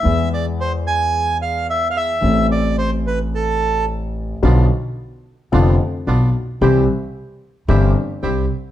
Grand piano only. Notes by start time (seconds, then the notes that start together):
0.03 E2 E3 G#3 B3
0.07 G#4
2.21 A1 A2 E3 A3 C4 A4
4.42 B1 B2 D3 F3 B3 F4
5.52 F1 F2 D3 F3 B3 F4
6.07 B1 B2
6.62 C2 C3 E3 G3 C4 G4
7.69 G1 G2 E3 G3 C4 G4
8.22 C2 C3